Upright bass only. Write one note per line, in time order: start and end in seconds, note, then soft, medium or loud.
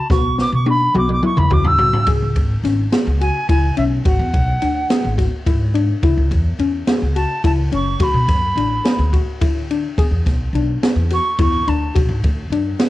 0.10 0.43 B1 medium
0.52 0.85 B2 medium
0.95 1.17 B1 loud
1.38 1.80 E2 loud
1.80 1.91 B1 medium
2.07 2.18 C#2 medium
2.22 2.33 C#2 medium
2.35 2.57 G#1 medium
2.63 2.86 G#1 medium
3.07 3.28 C#2 medium
3.49 3.71 C#2 loud
3.77 3.99 B1 medium
4.05 4.16 G#1 medium
4.19 4.30 E2 medium
4.34 4.55 B1 medium
4.62 4.84 D2 medium
5.05 5.26 G#1 medium
5.47 5.90 G#2 medium
6.03 6.14 C#2 medium
6.17 6.28 C#2 medium
6.31 6.53 E2 medium
6.59 6.81 E2 medium
7.02 7.23 C#2 medium
7.44 7.66 C#2 loud
7.72 7.94 F#1 medium
8.00 8.11 D2 medium
8.14 8.25 B2 medium
8.28 8.50 F#2 medium
8.56 8.78 A1 medium
8.99 9.21 D2 medium
9.42 9.85 D3 medium
9.98 10.09 E2 medium
10.11 10.22 E2 medium
10.26 10.48 B1 medium
10.53 10.75 B1 medium
10.96 11.18 E2 medium
11.39 11.61 E2 loud
11.67 11.89 D2 medium
11.96 12.07 B1 medium
12.09 12.20 G#2 medium
12.24 12.45 D2 medium
12.50 12.73 F#2 medium